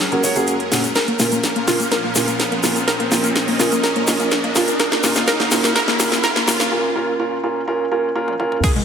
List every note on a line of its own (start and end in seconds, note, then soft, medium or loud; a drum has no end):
0.00 0.92 F#2 medium
0.00 0.92 F#3 medium
0.00 0.86 C#4 medium
0.00 0.92 C#4 medium
0.00 0.92 G#4 medium
0.00 4.76 A#4 medium
0.00 riser medium
0.12 0.21 A#3 medium
0.12 0.21 C#4 medium
0.12 0.21 F#4 medium
0.12 0.21 A#4 loud
0.12 closed hi-hat soft
0.24 0.34 A#3 medium
0.24 0.34 C#4 medium
0.24 0.34 F#4 medium
0.24 0.34 C#5 medium
0.24 open hi-hat loud
0.24 shaker medium
0.35 0.52 A#3 medium
0.35 0.52 C#4 medium
0.35 0.52 F#4 medium
0.35 0.52 G#4 loud
0.35 closed hi-hat soft
0.35 shaker soft
0.47 closed hi-hat medium
0.47 shaker soft
0.60 closed hi-hat soft
0.72 0.82 A#2 medium
0.72 0.82 A#3 medium
0.72 0.82 C#4 medium
0.72 0.82 F#4 medium
0.72 0.82 A#4 medium
0.72 snare medium
0.72 open hi-hat loud
0.72 shaker medium
0.84 closed hi-hat soft
0.84 shaker soft
0.95 4.76 A#2 medium
0.95 4.76 F3 medium
0.95 6.68 C#4 medium
0.95 1.04 A#4 medium
0.95 2.86 F5 medium
0.95 snare medium
0.95 closed hi-hat medium
0.95 shaker soft
1.08 1.16 A#3 medium
1.08 closed hi-hat soft
1.19 1.36 A#2 medium
1.19 1.36 A#3 medium
1.19 1.28 A#3 medium
1.19 1.36 C#4 medium
1.19 1.36 F4 medium
1.19 1.36 A#4 medium
1.19 snare medium
1.19 open hi-hat loud
1.19 shaker medium
1.32 1.40 A#3 medium
1.32 closed hi-hat soft
1.32 shaker soft
1.44 snare medium
1.44 closed hi-hat medium
1.44 shaker soft
1.56 1.64 A#3 medium
1.56 closed hi-hat soft
1.68 1.78 A#2 medium
1.68 1.78 A#3 medium
1.68 1.78 C#4 medium
1.68 1.78 F4 medium
1.68 1.76 F4 medium
1.68 1.78 A#4 medium
1.68 snare medium
1.68 open hi-hat loud
1.68 shaker medium
1.80 1.88 A#3 medium
1.80 closed hi-hat medium
1.80 shaker medium
1.92 2.00 A#4 loud
1.92 snare medium
1.92 closed hi-hat medium
1.92 shaker soft
2.04 2.12 A#3 medium
2.15 2.32 A#2 medium
2.15 2.32 A#3 medium
2.15 2.24 A#3 medium
2.15 2.32 C#4 medium
2.15 2.32 F4 medium
2.15 2.32 A#4 medium
2.15 snare medium
2.15 open hi-hat loud
2.15 shaker medium
2.28 2.36 A#3 medium
2.28 closed hi-hat soft
2.28 shaker medium
2.40 snare medium
2.40 closed hi-hat medium
2.40 shaker soft
2.52 2.60 A#3 medium
2.52 closed hi-hat soft
2.63 2.74 A#2 medium
2.63 2.74 A#3 medium
2.63 2.74 C#4 medium
2.63 2.74 F4 medium
2.63 2.72 F4 medium
2.63 2.74 A#4 medium
2.63 snare medium
2.63 open hi-hat loud
2.63 shaker medium
2.76 2.84 A#3 medium
2.76 closed hi-hat soft
2.76 shaker soft
2.88 2.96 A#4 medium
2.88 4.78 D#5 medium
2.88 snare medium
2.88 closed hi-hat medium
2.88 shaker soft
3.00 3.08 A#3 medium
3.00 closed hi-hat soft
3.11 3.28 A#2 medium
3.11 3.20 A#3 medium
3.11 3.28 A#3 medium
3.11 3.28 C#4 medium
3.11 3.28 F4 medium
3.11 3.28 A#4 medium
3.11 snare medium
3.11 open hi-hat loud
3.11 shaker medium
3.24 3.32 A#3 medium
3.24 closed hi-hat medium
3.24 shaker medium
3.36 snare medium
3.36 closed hi-hat medium
3.36 shaker soft
3.48 3.56 A#3 medium
3.48 open hi-hat medium
3.59 3.70 A#2 medium
3.59 3.70 A#3 medium
3.59 3.70 C#4 medium
3.59 3.70 F4 medium
3.59 3.68 F4 medium
3.59 3.70 A#4 medium
3.59 snare medium
3.59 open hi-hat loud
3.59 shaker medium
3.72 3.80 A#3 medium
3.72 closed hi-hat medium
3.72 shaker soft
3.84 3.92 A#4 medium
3.84 snare medium
3.84 closed hi-hat medium
3.84 shaker soft
3.96 4.04 A#3 medium
3.96 closed hi-hat soft
4.07 4.24 A#2 medium
4.07 4.24 A#3 medium
4.07 4.16 A#3 medium
4.07 4.24 C#4 medium
4.07 4.24 F4 medium
4.07 4.24 A#4 medium
4.07 snare medium
4.07 open hi-hat loud
4.07 shaker medium
4.20 4.28 A#3 medium
4.20 closed hi-hat medium
4.20 shaker soft
4.31 snare medium
4.31 closed hi-hat medium
4.31 shaker soft
4.44 4.52 A#3 medium
4.44 closed hi-hat soft
4.55 4.66 A#2 medium
4.55 4.66 A#3 medium
4.55 4.66 C#4 medium
4.55 4.66 F4 medium
4.55 4.64 F4 medium
4.55 4.66 A#4 loud
4.55 snare medium
4.55 open hi-hat loud
4.55 shaker medium
4.68 4.76 A#3 medium
4.68 closed hi-hat medium
4.68 shaker medium
4.79 6.70 D#2 medium
4.79 6.70 D#3 medium
4.79 6.70 F#4 medium
4.79 4.88 A#4 loud
4.79 6.70 F5 medium
4.79 snare medium
4.79 closed hi-hat medium
4.79 shaker soft
4.92 5.00 A#3 medium
4.92 snare medium
4.92 closed hi-hat soft
5.04 5.20 A#2 medium
5.04 5.20 A#3 medium
5.04 5.12 A#3 medium
5.04 5.20 C#4 medium
5.04 5.20 F4 medium
5.04 5.20 A#4 medium
5.04 snare medium
5.04 open hi-hat loud
5.04 shaker medium
5.15 5.24 A#3 medium
5.15 snare medium
5.15 closed hi-hat medium
5.15 shaker medium
5.27 5.36 A#4 loud
5.27 snare loud
5.27 closed hi-hat medium
5.27 shaker soft
5.40 5.48 A#3 medium
5.40 snare medium
5.40 closed hi-hat soft
5.51 5.68 A#2 medium
5.51 5.68 A#3 medium
5.51 5.60 A#3 medium
5.51 5.68 C#4 medium
5.51 5.68 F4 medium
5.51 5.68 A#4 medium
5.51 snare medium
5.51 open hi-hat loud
5.51 shaker medium
5.64 5.72 A#3 medium
5.64 snare medium
5.64 closed hi-hat medium
5.64 shaker soft
5.76 5.84 A#4 loud
5.76 snare medium
5.76 closed hi-hat medium
5.76 shaker soft
5.88 5.96 A#3 medium
5.88 snare medium
6.00 6.16 A#2 medium
6.00 6.16 A#3 medium
6.00 6.08 A#3 medium
6.00 6.16 C#4 medium
6.00 6.16 F4 medium
6.00 6.16 A#4 medium
6.00 snare loud
6.00 open hi-hat loud
6.00 shaker medium
6.12 6.20 A#3 medium
6.12 snare medium
6.12 closed hi-hat medium
6.12 shaker soft
6.23 6.32 A#4 loud
6.23 snare medium
6.23 closed hi-hat medium
6.23 shaker soft
6.36 6.44 A#3 medium
6.36 snare medium
6.36 closed hi-hat soft
6.48 6.64 A#2 medium
6.48 6.64 A#3 medium
6.48 6.56 A#3 medium
6.48 6.64 C#4 medium
6.48 6.64 F4 medium
6.48 6.64 A#4 medium
6.48 snare loud
6.48 open hi-hat loud
6.48 shaker medium
6.60 6.68 A#3 medium
6.60 snare medium
6.60 closed hi-hat medium
6.60 shaker soft
6.72 6.88 A#2 medium
6.72 6.88 A#3 medium
6.72 6.88 C#4 medium
6.72 6.88 F4 medium
6.72 6.88 A#4 medium
6.96 7.12 A#2 medium
6.96 7.12 A#3 medium
6.96 7.12 C#4 medium
6.96 7.12 F4 medium
6.96 7.12 A#4 medium
7.19 7.36 A#2 medium
7.19 7.36 A#3 medium
7.19 7.36 C#4 medium
7.19 7.36 F4 medium
7.19 7.36 A#4 loud
7.43 7.60 A#2 medium
7.43 7.60 A#3 medium
7.43 7.60 C#4 medium
7.43 7.60 F4 medium
7.43 7.60 A#4 medium
7.68 7.84 A#2 medium
7.68 7.84 A#3 medium
7.68 7.84 C#4 medium
7.68 7.84 F4 medium
7.68 7.84 A#4 loud
7.91 8.08 A#2 medium
7.91 8.08 A#3 medium
7.91 8.08 C#4 medium
7.91 8.08 F4 medium
7.91 8.08 A#4 medium
8.15 8.32 A#2 medium
8.15 8.32 A#3 medium
8.15 8.32 C#4 medium
8.15 8.32 F4 medium
8.15 8.32 A#4 loud
8.28 high tom medium
8.39 8.56 A#2 medium
8.39 8.56 A#3 medium
8.39 8.56 C#4 medium
8.39 8.56 F4 medium
8.39 8.56 A#4 loud
8.39 mid tom medium
8.52 mid tom medium
8.64 8.85 G#3 medium
8.64 8.85 C4 medium
8.64 8.85 F#4 medium
8.64 8.72 G#4 loud
8.64 kick loud
8.64 closed hi-hat medium
8.64 crash loud
8.64 impact medium
8.64 shaker soft
8.76 8.84 G#3 medium
8.76 closed hi-hat soft